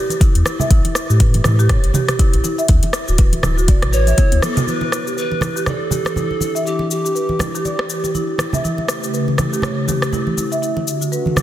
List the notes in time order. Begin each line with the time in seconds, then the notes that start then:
0.10 G4, closed hi-hat, muted conga, shaker
0.20 E4, kick, closed hi-hat, high conga, shaker
0.35 E2, closed hi-hat
0.45 E4, cross-stick, muted conga, shaker
0.60 E5, low conga, shaker
0.70 A1 E4, kick, closed hi-hat, high conga, shaker
0.85 closed hi-hat, muted conga
0.95 cross-stick, shaker
1.10 A2 G4, shaker
1.20 B4, kick, closed hi-hat, shaker
1.34 closed hi-hat, muted conga, high conga
1.44 A2 E4, cross-stick, mid tom, high conga, low conga, shaker
1.59 G4, shaker
1.69 C#5, kick, cross-stick, closed hi-hat, muted conga, low conga, shaker
1.84 G1, closed hi-hat
1.94 G4, mid tom, high conga, low conga, shaker
2.08 G4, cross-stick, closed hi-hat, mid tom, muted conga, shaker
2.19 E4, kick, closed hi-hat, low conga, shaker
2.33 A1, closed hi-hat, high conga
2.44 E4, muted conga, shaker
2.58 E5, shaker
2.68 D2 E4, kick, closed hi-hat, high conga, shaker
2.83 closed hi-hat, muted conga
2.93 cross-stick, shaker
3.08 D1 F#4, shaker
3.18 B4, kick, closed hi-hat, shaker
3.32 closed hi-hat, muted conga, high conga
3.43 D1 E4, cross-stick, mid tom, high conga, low conga, shaker
3.57 F#4, shaker
3.68 D5, kick, closed hi-hat, muted conga, shaker
3.82 A1, cross-stick, closed hi-hat, mid tom
3.93 B4 C#5, shaker
4.07 E5, closed hi-hat, muted conga, shaker
4.17 E4, kick, closed hi-hat, high tom, high conga, shaker
4.32 D2, closed hi-hat, high tom
4.42 B3 A4, cross-stick, mid tom, muted conga, high conga, shaker
4.57 F#4, closed hi-hat, mid tom, low conga, shaker
4.67 E3 D4 E4 G4 B4, high conga, shaker
4.81 muted conga
4.92 cross-stick, shaker
5.06 G4, shaker
5.17 B4, shaker
5.31 muted conga
5.41 E4, cross-stick, high conga, low conga, shaker
5.56 G4, shaker
5.66 A4 D5, cross-stick, muted conga, low conga, shaker
5.91 G4, high conga, low conga, shaker
6.05 cross-stick, muted conga, shaker
6.16 E4, low conga, shaker
6.31 high conga
6.41 E4, muted conga, high conga, shaker
6.55 E5, shaker
6.65 E4 G4, shaker
6.79 muted conga
6.90 G4, shaker
7.05 G4, shaker
7.15 B4, shaker
7.29 muted conga, high conga
7.39 E4, cross-stick, high conga, low conga, shaker
7.55 G4, shaker
7.65 D5, muted conga, shaker
7.79 cross-stick
7.90 G4, shaker
8.04 G4, muted conga, shaker
8.15 E4, high conga, shaker
8.38 E4, cross-stick, muted conga, high conga, shaker
8.53 E5, low conga, shaker
8.64 C#3 A3 E4, high conga, shaker
8.78 muted conga
8.88 cross-stick, shaker
9.03 G4, shaker
9.14 B4, shaker
9.28 muted conga
9.38 E4, cross-stick, high conga, low conga, shaker
9.53 G4, shaker
9.62 C#5, cross-stick, muted conga, low conga, shaker
9.88 G4, high conga, low conga, shaker
10.02 cross-stick, muted conga, shaker
10.13 E4, low conga, shaker
10.27 high conga
10.37 E4, muted conga, high conga, shaker
10.52 E5, shaker
10.62 D3 E4 F#4, shaker
10.77 muted conga
10.88 shaker
11.01 F#4, shaker
11.12 B4, shaker
11.26 muted conga, high conga
11.36 E4, cross-stick, high conga, low conga, shaker